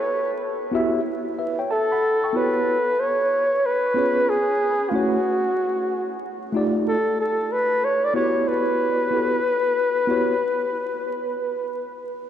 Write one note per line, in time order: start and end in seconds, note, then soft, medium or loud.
0.00 0.32 C#5 medium
0.71 0.98 B3 medium
0.71 0.98 E4 medium
0.71 0.99 F#4 medium
0.71 0.99 G4 medium
0.71 1.00 E5 loud
1.39 1.58 B4 medium
1.39 1.58 E5 medium
1.59 1.70 C#5 medium
1.59 1.70 G5 medium
1.71 2.38 A4 loud
1.71 1.90 E5 medium
1.71 1.90 A5 medium
1.92 2.23 F#5 medium
1.92 2.22 B5 medium
2.24 2.55 G5 medium
2.24 2.54 C#6 medium
2.33 2.75 B3 medium
2.33 2.75 E4 medium
2.33 2.76 F#4 medium
2.33 2.76 G4 medium
2.33 3.02 B4 loud
2.33 2.77 C#5 medium
3.00 3.67 C#5 loud
3.66 4.31 B4 loud
3.94 4.36 B3 medium
3.94 4.36 C#4 medium
3.94 4.37 F4 medium
3.94 4.37 G#4 medium
3.98 4.38 C#5 medium
4.30 4.91 G#4 medium
4.89 5.17 A3 medium
4.89 5.18 C#4 medium
4.89 5.18 E4 medium
4.89 4.96 F4 medium
4.94 5.19 F#4 medium
4.94 6.23 F#4 medium
4.94 5.20 C#5 medium
6.53 6.94 A3 medium
6.53 6.95 D#4 medium
6.53 6.95 F4 medium
6.53 6.96 G4 medium
6.57 6.96 D5 medium
6.88 7.17 A4 medium
7.20 7.54 A4 medium
7.52 7.86 B4 loud
7.84 8.06 C#5 medium
8.05 8.16 D5 medium
8.14 9.07 B3 medium
8.14 9.07 E4 medium
8.14 9.08 F#4 medium
8.14 9.08 G4 medium
8.14 8.49 C#5 medium
8.14 9.09 C#5 medium
8.48 12.03 B4 medium
9.11 9.37 B3 medium
9.11 9.37 E4 medium
9.11 9.38 F#4 medium
9.11 9.38 G4 medium
9.11 9.39 A4 medium
10.07 10.33 B3 medium
10.07 10.34 E4 medium
10.07 10.34 F#4 medium
10.07 10.35 G4 medium
10.07 10.35 C#5 medium